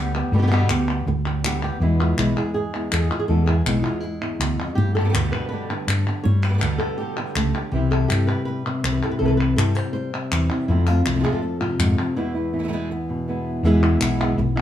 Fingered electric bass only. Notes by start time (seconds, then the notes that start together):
Already playing: D2
0.32 G2
0.69 D2
1.06 D2
1.80 E2
2.17 B1
2.92 E2
3.29 E2
3.66 B1
4.40 D2
4.77 G2
5.14 D2
5.88 G2
6.25 G2
6.62 D2
7.35 C#2
7.72 C2
8.10 G2
8.84 C2
9.21 C2
9.57 G2
10.32 E2
10.68 F2
11.06 C2
11.79 F2
13.63 E2
14.00 B1
14.37 B1